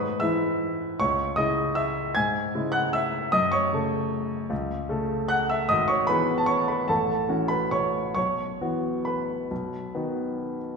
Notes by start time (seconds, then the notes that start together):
Already playing: G#2 B4 B5
0.20 E3 G#3 E4 E5 E6
1.00 C#2 C#5 C#6
1.36 C#3 G#3 E4 D#5 D#6
1.75 E5 E6
2.15 G#2 G#5 G#6
2.55 C#3 G#3 E4
2.72 F#5 F#6
2.93 E5 E6
3.32 F#2 D#5 D#6
3.52 C#5 C#6
3.73 C#3 A3 A4
4.50 C#2
4.89 C#3 A3 A4
5.28 F#5 F#6
5.50 E5 E6
5.69 G#1 D#5 D#6
5.88 C#5 C#6
6.07 E3 B3 G#4 B4 B5
6.38 A5
6.46 C#5 C#6
6.68 B4 B5
6.88 A1 A4 A5
7.29 E3 C#4 F#4
7.48 B4 B5
7.71 C#5 C#6
8.15 B1 C#5 C#6
8.61 E3 B3 F#4
9.05 B4 B5
9.51 B1
9.95 D#3 B3 F#4